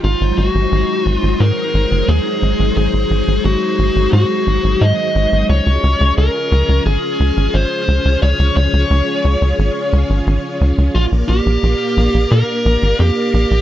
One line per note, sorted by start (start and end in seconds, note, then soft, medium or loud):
0.04 0.16 G#1 loud
0.04 5.45 F#3 medium
0.04 5.45 G#3 medium
0.04 5.45 D#4 medium
0.04 0.38 F4 loud
0.04 5.45 C5 medium
0.21 0.33 G#1 medium
0.38 0.50 G#1 medium
0.38 1.08 F#4 loud
0.55 0.67 G#1 medium
0.72 0.84 G#1 loud
1.06 1.18 G#1 loud
1.06 1.43 F4 loud
1.23 1.35 G#1 medium
1.40 1.52 G#2 loud
1.40 2.10 A#4 loud
1.74 1.86 G#1 medium
1.91 2.03 F#1 medium
2.08 2.20 D#2 loud
2.08 2.75 G#4 loud
2.42 2.54 G#1 medium
2.59 2.72 G#1 medium
2.77 2.89 G#1 loud
2.77 3.45 G#4 loud
2.93 3.06 G#1 medium
3.11 3.23 G#1 loud
3.28 3.40 G#1 medium
3.45 3.57 G#1 loud
3.45 4.09 F#4 loud
3.79 3.91 G#1 medium
3.96 4.08 G#1 medium
4.13 4.25 G#2 loud
4.13 4.83 F#4 loud
4.47 4.59 G#1 medium
4.64 4.76 G#1 medium
4.81 4.93 G#2 loud
4.81 5.45 D#5 loud
5.15 5.27 G#1 medium
5.32 5.44 G#1 medium
5.49 5.61 C#2 loud
5.49 10.91 C#4 medium
5.49 10.91 F4 medium
5.49 10.91 G#4 medium
5.49 6.14 C#5 loud
5.66 5.78 C#2 medium
5.84 5.96 C#2 medium
6.01 6.13 C#2 medium
6.18 6.30 C#2 loud
6.18 6.82 A#4 loud
6.52 6.64 C#2 medium
6.69 6.81 C#2 medium
6.86 6.98 G#1 loud
6.86 7.56 G#4 loud
7.20 7.32 C#2 medium
7.37 7.49 G#1 medium
7.54 7.66 G#1 loud
7.54 8.18 C5 loud
7.88 8.00 C#2 medium
8.05 8.17 C#2 medium
8.22 8.34 C#2 loud
8.22 8.54 C#5 loud
8.39 8.51 C#2 medium
8.56 8.68 C#2 loud
8.56 9.89 C#5 medium
8.73 8.85 C#2 medium
8.91 9.02 C#2 loud
9.25 9.37 C#2 medium
9.42 9.54 C#2 medium
9.59 9.71 G#1 loud
9.93 10.05 C#2 loud
10.10 10.22 G#1 medium
10.27 10.39 G#1 loud
10.61 10.73 C#2 medium
10.78 10.90 C#2 medium
10.95 11.07 A#1 loud
10.95 13.62 A#3 medium
10.95 11.04 F4 loud
10.95 13.62 A#4 medium
10.95 13.62 D5 medium
10.95 13.62 F5 medium
11.12 11.24 A#1 medium
11.29 11.41 A#1 medium
11.29 12.31 G4 loud
11.46 11.58 A#1 medium
11.63 11.75 A#1 loud
11.97 12.09 A#1 medium
12.14 12.26 A#1 medium
12.31 12.43 A#2 loud
12.31 13.00 A#4 loud
12.65 12.77 A#1 loud
12.83 12.94 G#1 medium
13.00 13.11 F2 loud
13.00 13.62 G4 loud
13.34 13.46 A#1 medium
13.51 13.62 A#1 medium